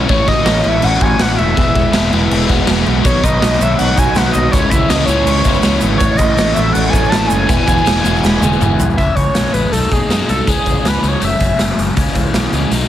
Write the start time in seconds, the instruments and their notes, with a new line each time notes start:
Already playing: clean electric guitar E4, transistor combo organ E4 C#6
0.07 fingered electric bass A1, overdriven electric guitar A2 E3 A3 C#4 E4, clean electric guitar A2, transistor combo organ A4 F#5, analog synth lead C#5, kick, crash
0.26 fingered electric bass A1, clean electric guitar F#3, overdriven electric guitar A3 C#4 E4, analog synth lead D#5, kick, crash
0.45 fingered electric bass A1, overdriven electric guitar A2 E3 A3 C#4 E4, clean electric guitar C#4, snare, crash
0.55 snare
0.63 fingered electric bass A1, overdriven electric guitar A3 C#4 E4, clean electric guitar E4, crash
0.68 analog synth lead E5
0.82 fingered electric bass A1, clean electric guitar C#4, analog synth lead F#5, crash
1.01 fingered electric bass A1, overdriven electric guitar A3 C#4 E4, clean electric guitar F#4, analog synth lead G#5, kick, crash
1.18 fingered electric bass A1, overdriven electric guitar E3 A3 C#4 E4, clean electric guitar F#3, analog synth lead F#5, snare, crash
1.37 fingered electric bass E1, clean electric guitar F#4, analog synth lead E5, crash
1.55 fingered electric bass E1, clean electric guitar E2, overdriven electric guitar E3 G#3 B3 E4, transistor combo organ G#4 F#5 B5, kick, crash
1.74 fingered electric bass E1, clean electric guitar G#3, overdriven electric guitar G#3 B3 E4, kick, crash
1.92 fingered electric bass E1, overdriven electric guitar E3 G#3 B3 E4, clean electric guitar B3, snare, crash
2.11 fingered electric bass E1, overdriven electric guitar G#3 B3 E4, clean electric guitar E4, crash
2.30 fingered electric bass E1, clean electric guitar B3, crash
2.47 fingered electric bass E1, overdriven electric guitar G#3 B3 E4, clean electric guitar F#4, kick, snare, crash
2.65 fingered electric bass E1, overdriven electric guitar E3 G#3 B3 E4, clean electric guitar G#3, snare, crash
2.86 fingered electric bass B1, clean electric guitar F#4, crash
3.03 fingered electric bass B1, overdriven electric guitar B2 D#3 F#3 B3 D#4, clean electric guitar B3, analog synth lead C#5, kick, crash, shaker
3.08 transistor combo organ D#4 C#5
3.21 fingered electric bass B1, overdriven electric guitar F#3 B3 D#4, clean electric guitar B3, analog synth lead D#5, kick, crash, shaker
3.40 fingered electric bass B1, overdriven electric guitar B2 D#3 F#3 B3 D#4, clean electric guitar D#4, snare, crash, shaker
3.52 snare
3.59 fingered electric bass B1, overdriven electric guitar F#3 B3 D#4, clean electric guitar C#5, analog synth lead E5, crash, shaker
3.79 fingered electric bass B1, clean electric guitar D#4, analog synth lead F#5, crash, shaker
3.96 fingered electric bass B1, overdriven electric guitar F#3 B3 D#4, clean electric guitar F#4, analog synth lead G#5, kick, snare, crash, shaker
4.07 shaker
4.15 fingered electric bass B1, overdriven electric guitar D#3 F#3 B3 D#4, clean electric guitar B3, analog synth lead F#5, snare, crash, shaker
4.33 fingered electric bass B1, clean electric guitar F#4, analog synth lead D#5, crash, shaker
4.51 fingered electric bass C#2, overdriven electric guitar C#3 G#3 C#4 E4, clean electric guitar C#3, transistor combo organ E4 G#5, analog synth lead C#5, kick, crash, shaker
4.70 fingered electric bass C#2, clean electric guitar E3, overdriven electric guitar C#4 E4, analog synth lead E5, kick, crash, shaker
4.74 overdriven electric guitar G#3
4.89 fingered electric bass C#2, overdriven electric guitar C#3 G#3 C#4 E4, clean electric guitar G#3, analog synth lead D#5, snare, crash, shaker
4.99 snare
5.06 fingered electric bass C#2, overdriven electric guitar C#4 E4, clean electric guitar G#4, analog synth lead C#5, crash, shaker
5.10 overdriven electric guitar G#3
5.26 fingered electric bass C#2, clean electric guitar G#3, crash, shaker
5.44 fingered electric bass C#2, overdriven electric guitar G#3 C#4 E4, clean electric guitar B3, kick, snare, crash, shaker
5.54 shaker
5.63 fingered electric bass C#2, overdriven electric guitar C#3 G#3 C#4 E4, clean electric guitar E3, snare, crash, shaker
5.81 fingered electric bass G#1, clean electric guitar B3, crash, shaker
5.98 fingered electric bass A1, overdriven electric guitar A2 E3 A3 C#4 E4, clean electric guitar A2, analog synth lead C#5, transistor combo organ C#5, kick, crash, shaker
6.02 transistor combo organ F#5 A5
6.16 fingered electric bass A1, clean electric guitar E3, overdriven electric guitar C#4 E4, analog synth lead D#5, kick, crash, shaker
6.21 overdriven electric guitar A3
6.35 fingered electric bass A1, overdriven electric guitar A2 E3 A3 C#4 E4, clean electric guitar A3, snare, crash, shaker
6.48 snare
6.53 fingered electric bass A1, overdriven electric guitar A3 C#4 E4, clean electric guitar F#4, analog synth lead E5, crash, shaker
6.73 fingered electric bass A1, clean electric guitar A3, analog synth lead F#5, crash, shaker
6.90 fingered electric bass A1, overdriven electric guitar C#4 E4, analog synth lead G#5, kick
6.94 overdriven electric guitar A3, clean electric guitar C#4, snare, crash, shaker
7.04 shaker
7.09 fingered electric bass A1, overdriven electric guitar E3 A3, clean electric guitar E3, analog synth lead A5, snare, crash
7.13 overdriven electric guitar C#4 E4, shaker
7.27 fingered electric bass F#1, clean electric guitar C#4, analog synth lead G#5, shaker
7.31 crash
7.47 fingered electric bass E1, clean electric guitar E2, overdriven electric guitar E3 G#3 B3 E4, transistor combo organ B4 G#5, kick, crash, shaker
7.66 fingered electric bass E1, clean electric guitar E3, overdriven electric guitar G#3 B3 E4, kick, crash, shaker
7.77 shaker
7.84 fingered electric bass E1, overdriven electric guitar E3 G#3 B3 E4, clean electric guitar G#3, snare, crash, shaker
7.97 snare
8.04 fingered electric bass E1, overdriven electric guitar G#3 B3 E4, clean electric guitar F#4, crash, shaker
8.16 shaker
8.23 fingered electric bass E1, clean electric guitar G#3, snare, shaker
8.41 fingered electric bass E1, overdriven electric guitar G#3 B3 E4, clean electric guitar B3, high tom, shaker
8.52 shaker
8.60 fingered electric bass E1, overdriven electric guitar E3 G#3 B3 E4, clean electric guitar E3, mid tom, shaker
8.79 fingered electric bass B1, clean electric guitar B3, floor tom, shaker
8.90 shaker
8.97 fingered electric bass C#2, overdriven electric guitar C#3 E3 G#3 C#4, analog synth lead E5, kick, closed hi-hat
9.15 fingered electric bass C#2, analog synth lead C#5, kick, closed hi-hat
9.34 fingered electric bass B1, overdriven electric guitar C#3 E3 G#3 C#4, snare, closed hi-hat
9.53 fingered electric bass A1, overdriven electric guitar E3 G#3 C#4, analog synth lead B4, closed hi-hat
9.72 fingered electric bass B1, overdriven electric guitar B2 F#3 A3 D#4, analog synth lead A4, closed hi-hat
9.92 fingered electric bass B1, overdriven electric guitar F#3 A3 D#4, analog synth lead G#4, kick, closed hi-hat
10.09 fingered electric bass F#2, overdriven electric guitar B2 F#3 A3, snare, closed hi-hat
10.13 overdriven electric guitar D#4
10.29 fingered electric bass C2, analog synth lead A4, closed hi-hat
10.47 fingered electric bass C#2, overdriven electric guitar C#3 E3 G#3 C#4, analog synth lead G#4, kick, closed hi-hat
10.66 fingered electric bass C#2, kick, closed hi-hat
10.84 fingered electric bass C#2, overdriven electric guitar C#3 E3 G#3 C#4, analog synth lead B4, snare, closed hi-hat
11.02 fingered electric bass C#2, overdriven electric guitar E3 G#3 C#4, closed hi-hat
11.08 analog synth lead C#5
11.20 fingered electric bass F#1, overdriven electric guitar F#2 C#3 F#3 A3 C#4, closed hi-hat
11.24 analog synth lead E5
11.39 fingered electric bass F#1, overdriven electric guitar F#3 A3 C#4, kick, closed hi-hat
11.57 fingered electric bass F#1, overdriven electric guitar F#2 C#3 F#3 A3 C#4, snare, closed hi-hat
11.78 fingered electric bass F#1, closed hi-hat
11.95 fingered electric bass C#2, overdriven electric guitar C#3 E3 G#3 C#4, clean electric guitar C#3, kick, closed hi-hat
12.07 snare
12.15 fingered electric bass C#2, clean electric guitar E3, kick, closed hi-hat
12.33 fingered electric bass B1, overdriven electric guitar C#3 E3 G#3 C#4, clean electric guitar B3, snare, closed hi-hat
12.52 fingered electric bass C#2, overdriven electric guitar E3 G#3 C#4, clean electric guitar G#3, closed hi-hat
12.71 fingered electric bass B1, overdriven electric guitar B2 F#3 A3 D#4, clean electric guitar B2, closed hi-hat